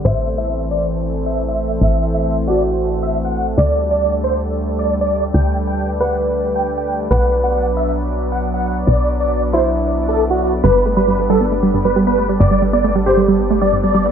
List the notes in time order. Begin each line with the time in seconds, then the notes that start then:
0.05 A1 E3 A3 C4 A4 C5 E5
0.38 E5
0.71 D5
1.26 E5
1.48 E5
1.81 A1 E5
2.14 E5
2.47 F#4 D5
3.03 E5
3.25 F#5
3.58 D2 G3 D4 A4 D5
3.91 D5
4.24 C5
4.79 D5
5.01 D5
5.34 D2 B4 G5
5.67 G5
6.00 B4 F#5
6.56 G5
6.78 G5
7.11 B1 F#3 B3 B4 F#5
7.44 F#5
7.77 E5
8.32 F#5
8.54 F#5
8.87 B1 D5
9.20 D5
9.53 E4 C5
10.09 A4
10.30 F#4
10.63 G1 G3 B4
10.75 B3
10.86 A3
10.97 G3 B4
11.08 G2
11.19 G3
11.30 G3 A4
11.41 B3
11.52 A3
11.63 G3
11.74 G2
11.85 G3 B4
11.96 G3
12.07 B3 B4
12.18 A3
12.29 G3
12.40 G1 G2 A4 D5
12.51 G3
12.62 G3
12.73 B3 D5
12.84 A3
12.95 G3
13.06 G2 G4 C5
13.17 G3
13.28 G3
13.39 B3
13.50 A3
13.61 G3 D5
13.73 G2
13.83 G3 D5
13.95 G3
14.06 B3